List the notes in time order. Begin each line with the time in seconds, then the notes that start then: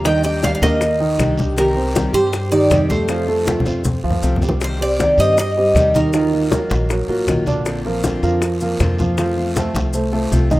Already playing: D#2
0.04 D#3 G3 D4 D#4 G4 D#5 G5, high bongo, high conga, long guiro, maracas
0.24 G3 D4 G4 D#5 G5, high bongo, high conga, maracas
0.43 D#3 G3 D4 G4 D5 F5, high bongo, high conga, short guiro, maracas
0.55 D5 F5
0.62 D#2 G3 A#3 D4 G4 A#4 D#5, high conga, short guiro, maracas
0.81 muted steel-string acoustic guitar stroke, high bongo, high conga, long guiro, maracas
1.00 D#3 D#4, high bongo, high conga
1.18 C2 D#3 G3 D4 G4, high bongo, low bongo, high conga, short guiro, maracas
1.37 G3 D4 G4, high bongo, high conga, short guiro, maracas
1.56 C3 D#3 G3 C4 G4 A#4, high bongo, high conga, long guiro, maracas
1.76 G3 C4 G4 C5, high conga
1.94 C3 D#3 G3 C4 G4, high bongo, high conga, short guiro, maracas
2.13 G2 G3 C4 G4 C5, high conga, short guiro, maracas
2.33 muted steel-string acoustic guitar stroke, high bongo, high conga, long guiro, maracas
2.52 D#3 D#4 G4 D5, high conga, maracas
2.70 F2 C3 D#3 G3 C4 G4, high bongo, low bongo, high conga, short guiro, maracas
2.89 G3 A3 C4 G4 A4 C5, high conga, short guiro, maracas
3.08 C3 F3 A3 C4 F4, high bongo, high conga, long guiro, maracas
3.27 A3 C4 F4 A4, high bongo, high conga
3.45 C3 F3 A3 C4 F4, high bongo, high conga, short guiro, maracas
3.60 high conga
3.65 F2 A3 C4 F4 C5, high bongo, short guiro, maracas
3.84 muted steel-string acoustic guitar stroke, low bongo, high conga, long guiro, maracas
4.04 D2 F3 F4
4.10 low conga
4.22 C2 C3 F3 A3 C4 F4, low bongo, short guiro, maracas
4.36 low conga
4.41 G3 A3 C4 F4 G4, low bongo, short guiro, maracas
4.49 low conga
4.60 C3 D#3 G3 C4 G4, high bongo, high conga, long guiro, maracas
4.64 C5
4.79 G3 C4 G4 C5 D5, high conga
4.99 C3 D#3 G3 C4 G4, high bongo, high conga, short guiro, maracas
5.18 G2 G3 G4 C5 D#5, high conga, short guiro, maracas
5.38 D#5, muted steel-string acoustic guitar stroke, high bongo, high conga, long guiro, maracas
5.57 G3 C4 G4 C5, high conga
5.75 D#2 C3 D#3 G3 C4 G4, high bongo, low bongo, high conga, short guiro, maracas
5.94 D#3 G3 C4 D#4 G4 A#4 D#5, high conga, short guiro, maracas
6.13 D#3 F#3 A#3 D#4 F4 D#5, high bongo, high conga, long guiro, maracas
6.33 F#3 A#3 F4, high bongo, high conga
6.51 D#3 F#3 A#3 F4 A#4, high bongo, high conga, short guiro, maracas
6.70 A#1, high conga, short guiro, maracas
6.89 F#3 F#4 A#4, muted steel-string acoustic guitar stroke, high bongo, high conga, long guiro, maracas
7.08 A1 F#3 A#3 F4 F#4 A#4, high bongo, high conga
7.27 A#1 D#3 F#3 A#3 F4, high bongo, low bongo, high conga, short guiro, maracas
7.46 D3 F#3 A#3 D4 F4 D5, high bongo, high conga, short guiro, maracas
7.65 D3 A#3 C4 F4, high bongo, high conga, long guiro, maracas
7.85 F3 A#3 C4 F4 A#4, high conga
8.04 D3 A#3 C4 F4, high bongo, high conga, short guiro, maracas
8.23 F2 F3 F4 A#4, high conga, short guiro, maracas
8.42 muted steel-string acoustic guitar stroke, high bongo, high conga, long guiro, maracas
8.61 F3 A#3 C4 F4 A#4, high conga, maracas
8.80 F2 D3 A#3 C4 F4, high bongo, low bongo, high conga, short guiro, maracas
8.98 F3 A#3 C4 F4 F5, high conga, short guiro, maracas
9.17 C3 F3 A3 C4 F4 F5, high bongo, high conga, long guiro, maracas
9.37 A3 C4 F4, high bongo, high conga
9.55 C3 F3 A3 C4 F4 A4 C5, high bongo, high conga, short guiro, maracas
9.74 C2, high bongo, high conga, short guiro, maracas
9.93 A3 A4 C5, muted steel-string acoustic guitar stroke, high conga, long guiro, maracas
10.12 A3 C4 F4 A4 C5, low bongo, high conga
10.31 C2 C3 F3 A3 C4 F4, low bongo, high conga, short guiro, maracas
10.50 D#3 A3 C4 D#4 F4 D#5, low bongo, high conga, short guiro, maracas